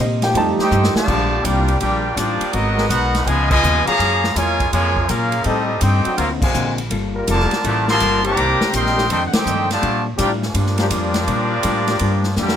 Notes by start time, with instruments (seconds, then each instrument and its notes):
0.00 upright bass A#2, hollow-body jazz guitar C3 A#3 D#4 G4, grand piano D#5
0.22 trombone section F3 A3 D#4 G4, grand piano G5, snare, ride
0.34 upright bass F2, hollow-body jazz guitar F3 A3 D#4 G4, grand piano G3 A3 D#4 A5, ride
0.58 trombone section C4 D#4 G4, muted upright bass stroke, snare
0.62 trumpet section D#4 A4 C5 G5
0.71 upright bass G2, hollow-body jazz guitar F3 A3 D#4 G4, hi-hat pedal
0.84 snare
0.95 trombone section D3 F3 A3, trumpet section G4 D5 F5 A5, muted upright bass stroke, snare
1.07 upright bass A#1, hollow-body jazz guitar A#2 G3 D4 F4, trombone section A#2 F3 D4 G4, kick, crash
1.43 upright bass C2, hollow-body jazz guitar A#2 G3 D4 F4, trombone section G3 D4 G4, trumpet section F4 A#4 D5 G5, hi-hat pedal, ride
1.68 ride
1.80 upright bass A#1, hollow-body jazz guitar A#2 G3 D4 F4, trombone section G3 D4 G4, trumpet section F4 A#4 D5 G5, ride
2.16 upright bass A1, hollow-body jazz guitar A#2 G3 D4 F4, trombone section F3 G3 D4, trumpet section A#3 F4 G4 D5, hi-hat pedal, ride
2.41 muted upright bass stroke, ride
2.51 upright bass G#1, trombone section F#3 B3 D#4, hollow-body jazz guitar G#3 B3 F#4 A#4, trumpet section B3 F#4 A#4 D#5, ride
2.76 trombone section G#3 B3 F#4 A#4, snare
2.88 upright bass B1, hollow-body jazz guitar G#3 B3 F#4, trombone section B3 D#4 F#4, trumpet section D#4 B4 F#5, hi-hat pedal, ride
2.92 trumpet section A#4, hollow-body jazz guitar A#4
3.15 snare, ride
3.24 upright bass C#2, trombone section B2 F3 G#3, hollow-body jazz guitar C#3 F3, trumpet section F4 B4 D#5 G#5, ride
3.28 hollow-body jazz guitar B3 D#4
3.48 trombone section B2 F3 G#3, trumpet section F4 B4 D#5 G#5, kick, crash
3.63 upright bass D#2, hollow-body jazz guitar C#3 F3 B3 D#4, hi-hat pedal
3.85 trombone section C#3 F3 F#3 A#3 F4 G#4, trumpet section G#4 C#5 F5 A#5, muted upright bass stroke, ride
3.99 upright bass F#2, hollow-body jazz guitar F#3 A#3 F4 G#4, ride
4.24 snare
4.33 upright bass E2, trombone section C#3 G#3 F4, hollow-body jazz guitar F#3, trumpet section F4 A#4 C#5 G#5, hi-hat pedal, ride
4.38 hollow-body jazz guitar A#3 F4 G#4
4.60 kick, ride
4.70 upright bass F2, trombone section C#3 F3 G#3, hollow-body jazz guitar F#3 A#3 F4, trumpet section F4 A#4 C#5 G#5, ride
4.74 hollow-body jazz guitar G#4
4.96 kick
5.07 upright bass A#2, hollow-body jazz guitar F#3 A#3 F4, trombone section A#3 C#4 F4, trumpet section C#4 G#4 A#4 F5, hi-hat pedal, ride
5.11 hollow-body jazz guitar G#4
5.32 ride
5.43 hollow-body jazz guitar A2 G3 C4 D#4, upright bass A2, trombone section G3 C4 D#4 A4, trumpet section C4 G4 A4 D#5, ride
5.80 upright bass G2, hollow-body jazz guitar A2 G3 C4 D#4, trombone section C4 D#4 G4, trumpet section D#4 A4 C5 G5, hi-hat pedal, ride
6.04 trombone section F#3 C4 D4 F#4, muted upright bass stroke, ride
6.17 upright bass D2, hollow-body jazz guitar D3 A#3 C4 F#4, trombone section A#3 C4 F4, trumpet section C4 F#4 A#4 F5, ride
6.41 trombone section A#2 C3 G#3, trumpet section F#4 C5 F5 G#5, kick, crash
6.54 upright bass A#1, hollow-body jazz guitar D3 A#3 C4 F#4, hi-hat pedal
6.78 ride
6.90 upright bass G1, hollow-body jazz guitar G3 A#3 F4 A4, ride
7.15 trombone section G3 A#3 F4 A#4
7.27 upright bass F1, trombone section D3 F3 A#3, hollow-body jazz guitar G3 A#3 F4 A4, trumpet section F4 A#4 D5 A5, hi-hat pedal, ride
7.40 snare
7.51 muted upright bass stroke, snare, ride
7.64 upright bass A1, trombone section D3 F3 A3, hollow-body jazz guitar G3 A#3 F4 A4, trumpet section F4 A#4 D5 A5, ride
7.88 trombone section D3 F3 G3 A#3 C4 F4 A#4, trumpet section A#4 F5 A5 C6, snare
8.00 upright bass G1, hollow-body jazz guitar G3 A#3 F4 A4, hi-hat pedal, ride
8.24 trombone section D#3 G3 A#3 C4 D4 G4, trumpet section C5 G5 A#5 D6, ride
8.36 upright bass C2, hollow-body jazz guitar C3 A#3 D#4 G4, ride
8.61 muted upright bass stroke, snare
8.72 upright bass A#1, hollow-body jazz guitar C3 A#3 D#4 G4, trombone section D#3 G3 C4, trumpet section A#4 D#5 G5 C6, hi-hat pedal, ride
8.86 snare
8.95 trombone section D#3 A3 D4 G4, snare
9.09 upright bass F2, hollow-body jazz guitar F2 D#3 A3 D4, trombone section D#3 A3 C4, trumpet section A4 D#5 G5 C6, ride
9.26 trumpet section F#5
9.33 trombone section C4 D#4 G4, trumpet section D#4 A4 C5 G5, muted upright bass stroke, snare, ride
9.46 hollow-body jazz guitar F2 D#3 A3 D4, upright bass G2, hi-hat pedal
9.70 trombone section D3 F3 A3, trumpet section G4 D5 F5 A5, snare, ride
9.81 hollow-body jazz guitar A#2 G3 D4 F4, upright bass A#2, ride
10.17 upright bass A2, hollow-body jazz guitar A#2 G3 D4 F4, trombone section F3 G3 A#3 D4 G4, trumpet section F4 A#4 D5 G5, hi-hat pedal, ride
10.43 trombone section F3 G3 D4, trumpet section F4 G4 A#4 D5, snare
10.54 upright bass G2, hollow-body jazz guitar A#2 G3 D4 F4, ride
10.66 snare
10.78 trombone section F3 A#3 D4 G4, snare, ride
10.90 upright bass F2, hollow-body jazz guitar A#2 G3 D4 F4, hi-hat pedal, ride
11.14 snare, ride
11.28 upright bass A#2, hollow-body jazz guitar A#2 G3 D4 F4, ride
11.63 upright bass A2, hollow-body jazz guitar A#2 G3 D4 F4, hi-hat pedal, ride
11.87 trombone section F3 A#3 D4 G4, snare, ride
11.99 upright bass G2, hollow-body jazz guitar A#2 G3 D4 F4, ride
12.24 snare
12.36 upright bass F2, trombone section G2 D3 G3, hollow-body jazz guitar A#2 G3 D4 F4, trumpet section A#3 D4 G4, snare, hi-hat pedal
12.49 snare